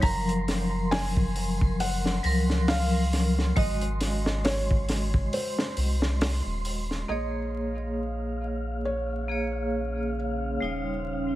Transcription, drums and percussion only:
0.02 kick, open hi-hat
0.29 closed hi-hat
0.48 snare, open hi-hat
0.92 snare, open hi-hat
1.17 kick
1.36 open hi-hat
1.61 kick
1.80 open hi-hat
2.06 snare
2.24 open hi-hat
2.50 snare
2.68 snare, open hi-hat
3.13 snare, open hi-hat
3.39 snare
3.56 kick, open hi-hat
3.81 closed hi-hat
4.01 snare, open hi-hat
4.26 snare
4.45 snare, open hi-hat
4.71 kick
4.89 snare, open hi-hat
5.14 kick
5.33 open hi-hat
5.59 snare
5.77 open hi-hat
6.02 snare
6.21 snare, open hi-hat
6.65 open hi-hat
6.91 snare

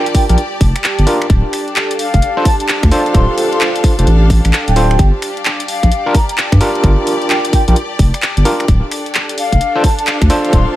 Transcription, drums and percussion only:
0.06 closed hi-hat
0.15 kick, open hi-hat
0.29 closed hi-hat
0.38 closed hi-hat
0.61 kick, open hi-hat
0.76 finger snap, closed hi-hat
0.84 clap
0.99 closed hi-hat
1.07 open hi-hat
1.22 finger snap, closed hi-hat
1.30 kick, closed hi-hat
1.53 finger snap, open hi-hat
1.68 closed hi-hat
1.76 clap
1.91 closed hi-hat
1.99 open hi-hat
2.14 kick, closed hi-hat
2.22 closed hi-hat
2.45 kick, open hi-hat
2.60 closed hi-hat
2.68 clap
2.83 finger snap, kick, closed hi-hat
2.92 open hi-hat
3.06 closed hi-hat
3.15 kick, closed hi-hat
3.38 open hi-hat
3.53 closed hi-hat
3.61 clap
3.76 closed hi-hat
3.84 kick, open hi-hat
3.99 closed hi-hat
4.07 closed hi-hat
4.30 kick, open hi-hat
4.45 finger snap, closed hi-hat
4.53 clap
4.68 closed hi-hat
4.76 open hi-hat
4.91 finger snap, closed hi-hat
4.99 kick, closed hi-hat
5.22 finger snap, open hi-hat
5.37 closed hi-hat
5.45 clap
5.60 closed hi-hat
5.68 open hi-hat
5.83 kick, closed hi-hat
5.92 closed hi-hat
6.14 kick, open hi-hat
6.29 closed hi-hat
6.38 clap
6.52 finger snap, kick, closed hi-hat
6.61 open hi-hat
6.75 closed hi-hat
6.84 kick, closed hi-hat
7.07 open hi-hat
7.22 closed hi-hat
7.30 clap
7.45 closed hi-hat
7.53 kick, open hi-hat
7.68 closed hi-hat
7.76 closed hi-hat
7.99 kick, open hi-hat
8.14 finger snap, closed hi-hat
8.22 clap
8.37 closed hi-hat
8.45 open hi-hat
8.60 finger snap, closed hi-hat
8.68 kick, closed hi-hat
8.92 finger snap, open hi-hat
9.06 closed hi-hat
9.15 clap
9.29 closed hi-hat
9.38 open hi-hat
9.52 kick, closed hi-hat
9.61 closed hi-hat
9.84 kick, open hi-hat
9.99 closed hi-hat
10.07 clap
10.22 finger snap, kick, closed hi-hat
10.30 open hi-hat
10.45 closed hi-hat
10.53 kick, closed hi-hat

